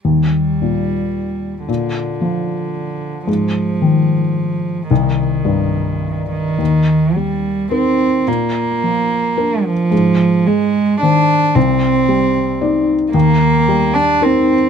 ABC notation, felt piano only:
X:1
M:3/4
L:1/8
Q:1/4=110
K:Eb
V:1 name="Felt piano" clef=bass
E,,2 B,,4 | B,,2 F,4 | A,,2 E,4 | C,,2 G,,4 |
E,,2 G,2 [EB]2 | B,,2 F,2 [DB]2 | A,,2 A,2 [E,c]2 | C,,2 G,2 [Ed]2 |
E,,2 G,2 [EB]2 |]